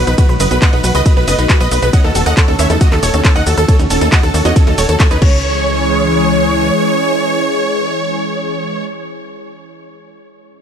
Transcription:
Already playing: D#3 F#3 B3 F#4
0.07 B1 D#4 B4, closed hi-hat, shaker
0.18 D#3 F#3 A3 F#4 B4, kick, closed hi-hat, ride, shaker
0.29 B1 B4
0.40 F#1 D#3 F#3 A3 F#4 B4 D#5, open hi-hat, shaker
0.51 B1 B3 B4, closed hi-hat, shaker
0.62 B3 D#5 F#5, kick, clap, closed hi-hat, ride, shaker
0.73 B1 D#3 F#3 A3 D#4 F#4 B4, closed hi-hat
0.84 B1 D#3 F#3 A3 F#4 B4, open hi-hat, shaker
0.95 C#2 B4 D#5, closed hi-hat, shaker
1.06 D#3 F#3 A3 F#4 B4 D#5, kick, closed hi-hat, ride, shaker
1.17 B1 B3 B4
1.28 F#1 B3 B4 D#5, open hi-hat, shaker
1.39 B1 D#3 F#3 A3 D#4 F#4 B4, closed hi-hat, shaker
1.49 F#4 B4, kick, clap, closed hi-hat, ride, shaker
1.60 B1 B4 D#5, closed hi-hat, shaker
1.71 B1 D#3 F#3 A3 F#4 B4 D#5, open hi-hat, shaker
1.82 B1 B3 B4, closed hi-hat, shaker
1.93 D#3 A3 C#4 F#4 D#5 F#5, kick, closed hi-hat, ride, shaker
2.04 D#2 D#4 A4
2.15 D#1 D#3 A3 C#4 F#4 A4, open hi-hat, shaker
2.26 D#2 A4 D#5 F#5, closed hi-hat, shaker
2.37 A4 C#5, kick, clap, closed hi-hat, ride, shaker
2.48 D#2 D#3 A3 C#4 F#4 A4, closed hi-hat
2.59 D#2 D#3 A3 C#4 F#4 C#5 E5, open hi-hat, shaker
2.70 E2 D#4 A4, closed hi-hat, shaker
2.81 D#3 A3 C#4 F#4 D#5, kick, closed hi-hat, ride, shaker
2.92 D#2 A4, clap
3.03 D#1 A4 C#5, open hi-hat, shaker
3.14 D#2 D#3 A3 C#4 F#4 A4, closed hi-hat, shaker
3.24 C#4 A4, kick, clap, closed hi-hat, ride, shaker
3.35 D#2 D#4 D#5 F#5, closed hi-hat, shaker
3.46 D#2 D#3 A3 C#4 F#4 A4, open hi-hat, shaker
3.57 D#2 A4, closed hi-hat, shaker
3.68 D#3 A3 C#4 F#4 A4 C#5, kick, closed hi-hat, ride, shaker
3.79 D#2 C#4, closed hi-hat, shaker
3.90 D#1 D#3 A3 C#4 F#4 A4, open hi-hat, shaker
4.01 D#2 D#4 A4, closed hi-hat, shaker
4.12 F#4 D#5 F#5, kick, clap, closed hi-hat, ride, shaker
4.23 D#2 D#3 A3 C#4 F#4 A4, closed hi-hat
4.34 D#2 D#3 A3 C#4 F#4 A4 C#5, open hi-hat, shaker
4.45 E2 C#4 F#4 D#5, closed hi-hat, shaker
4.56 D#3 A3 C#4 F#4 A4, kick, closed hi-hat, ride, shaker
4.67 D#2 D#4 A4, closed hi-hat
4.78 D#1 F#4 A4 C#5, open hi-hat, shaker
4.89 D#2 D#3 A3 C#4 F#4 A4, closed hi-hat, shaker
5.00 A4 C#5, kick, clap, closed hi-hat, ride, shaker
5.11 D#2 C#4 D#4 B4, closed hi-hat, shaker
5.22 C#2 E3 G#3 C#4 G#4 C#5, kick, crash

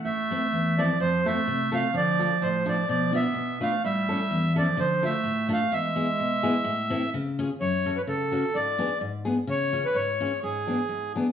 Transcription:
0.04 A2 A3 E5
0.31 C4 E4 A4
0.52 E2
0.77 F3 C4 E4 A4 D5
0.99 F2 F3 C5
1.24 A3 C4 F4 A4 E5
1.48 C3
1.72 A3 C4 F4 A4 F5
1.93 D3 F3 D5
2.19 D4 F4 A4
2.40 A2 F3 C5
2.65 F3 D4 F4 A4 D5
2.87 B2 F3 D5
3.12 B3 D4 F4 B4 E5
3.35 B2
3.61 A3 D4 F4 B4 F5
3.84 A2 G3 E5
4.09 C#4 E4 A4
4.31 E2
4.56 F3 C#4 E4 A4 D5
4.77 D3 F3 C5
5.02 A3 D4 F4 A4 E5
5.24 A2
5.49 A3 D4 F4 A4
5.53 F5
5.72 E2 G#3 E5
5.96 B3 E4 G#4
6.20 B2
6.43 B3 E4 G#4
6.64 A2
6.90 C4 E4 A4
7.14 C#3
7.39 C#4 F4 G#4
7.61 F#2 C#5
7.86 C#4 F#4 A4
7.97 B4
8.07 C#3 A4
8.32 C#4 F#4 A4
8.55 G#2 D5
8.79 B3 D4 G#4
9.01 G#2
9.25 B3 D4 G#4
9.47 C#3 C#5
9.73 C#4 F4 G#4
9.85 B4
9.94 G#2 C#5
10.20 C#4 F4 G#4
10.43 G#2 G#4
10.67 B3 D4 G#4
10.89 G#2
11.16 B3 D4 G#4

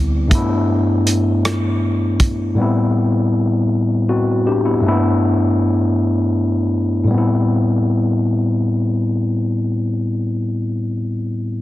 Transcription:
Already playing: D2 G3 B3 C4 E4
0.28 G2 A3 B3, kick, closed hi-hat
0.33 D4 E4
1.07 closed hi-hat
1.45 cross-stick, closed hi-hat
2.20 kick, closed hi-hat
2.55 A2 G3 B3
2.60 C4 E4
4.09 C4 F#4
4.47 D4 G4
4.66 B3 E4
4.81 G2 A3 A#3
4.86 D4 E4
4.91 B3
7.04 A2 G3
7.11 B3 C4
7.18 E4

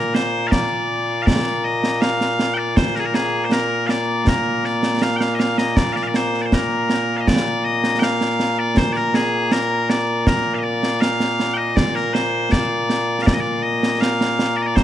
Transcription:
Already playing: A#2 A#3 A#4
0.14 C5, snare
0.47 F5
0.51 D5, concert bass drum, snare
1.22 D5 F5
1.27 concert bass drum, snare
1.65 D#5
1.84 snare
2.01 F5, snare
2.21 snare
2.39 snare
2.54 D5 G5
2.76 C5, concert bass drum, snare
2.96 G#4 A#4, snare
3.05 A#4
3.14 G#4, snare
3.45 C5
3.52 A#4, snare
3.87 D5 F5, snare
4.27 A#4, concert bass drum, snare
4.64 D5, snare
4.83 snare
5.02 F5, snare
5.16 G5
5.20 F5, snare
5.35 D#5
5.39 F5, snare
5.58 D#5, snare
5.77 D5, concert bass drum, snare
5.93 D5 F5, snare
6.03 F5
6.07 D5
6.14 C5, snare
6.34 snare
6.41 C5 D5
6.52 A#4, concert bass drum, snare
6.90 snare
7.17 D#5 F5
7.27 D5, concert bass drum, snare
7.65 D#5
7.84 snare
7.99 F5 G5, snare
8.21 snare
8.40 snare
8.59 D5
8.77 C5, concert bass drum, snare
8.92 D5, snare
8.96 A#4
9.14 G#4, snare
9.52 A#4, snare
9.89 D5, snare
10.27 A#4, concert bass drum, snare
10.54 F5
10.58 D#5
10.63 D5
10.83 snare
11.01 F5, snare
11.20 snare
11.40 snare
11.54 D#5 G5
11.76 D5, concert bass drum, snare
11.95 A#4, snare
12.13 C5, snare
12.51 D5, concert bass drum, snare
12.90 snare
13.22 F5
13.26 D5, concert bass drum, snare
13.34 D#5
13.40 D5
13.63 D#5
13.83 snare
14.00 F5, snare
14.21 snare
14.39 snare
14.57 D5
14.62 D5 D#5
14.75 C5, concert bass drum, snare

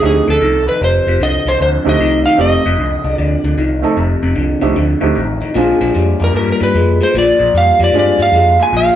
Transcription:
0.02 D2 F2 D3 A3 C4 D#4 G4
0.06 G#4
0.28 D2 F2 D3 A4
0.41 C2 F2 D#3
0.67 F2 D#3 B4
0.81 F1 F2 C3 C5
1.07 F1 F2 C3
1.20 C2 F2 D3 D#5
1.45 C2 F2 D3 C5
1.60 D2 F2 D3 C5
1.84 D2 F2 D3 A3 C4 D#4 G4
1.89 D#5
2.00 F2 D#3
2.26 F2 D#3 F5
2.37 F1 F2 C3 A3 C4 D#4 G4 D#5
2.65 F1 F2 C3
2.79 C2 F2 D3
3.04 C2 F2 D3
3.16 D2 F2 D3 D5
3.44 D2 F2 D3
3.57 C2 F2 D#3
3.82 F2 D#3 A3 C4 D#4 A4
3.97 F1 F2 C3
4.22 F1 F2 C3
4.35 C2 F2 D3
4.61 C2 F2 D3 A3 C4 D#4 G4
4.75 D2 F2 D3
5.01 D2 F2 D3 A3 C4 D#4 G4
5.15 A1 F2 D#3
5.41 F2 D#3
5.54 A#1 A#2 F3 G#3 C4 D4 F4
5.81 A#1 A#2 F3
5.94 F2 A#2 G3
6.20 F2 A#2 G3
6.24 A#4
6.34 G2 A#2 G3 A#4
6.52 A#4
6.60 G2 A#2 G3 B4
6.74 F2 A#2 G#3
7.01 A#2 G#3 C5
7.14 A#1 A#2 F3
7.18 D5
7.39 A#1 A#2 F3
7.53 F2 A#2 G3
7.57 F5
7.79 F2 A#2 G3
7.84 D5
7.92 G2 A#2 G3 G#3 C4 D4 F4
7.99 D5
8.18 G2 A#2 G3 F5
8.32 F2 A#2 G#3
8.59 A#2 G#3 G#5
8.73 A#1 A#2 F3
8.77 F5

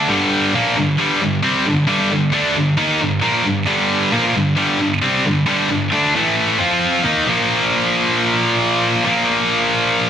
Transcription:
0.08 G2 D3 G3
0.54 A#2 F3 A#3
0.76 G2 D3
0.98 G2 D3 G3
1.22 G2 D3
1.43 C3 G3 C4
1.66 G2 D3
1.87 G2 D3 G3
2.11 G2 D3
2.32 D3 A3 D4
2.55 G2 D3
2.77 D#3 A#3 D#4
3.00 G2 D3
3.22 A#2 F3 A#3
3.45 G2 D3
3.67 G2 D3 G3
4.12 A#2 F3 A#3
4.34 G2 D3
4.57 G2 D3 G3
4.80 G2 D3
5.02 C3 G3 C4
5.25 G2 D3
5.46 G2 D3 G3
5.70 G2 D3
5.92 D3 A3 D4
6.15 A2 E3 A3
6.58 F3 C4 F4
7.03 D#3 A#3 D#4
7.25 A#2 F3 A#3
9.04 A#2 F3 A#3

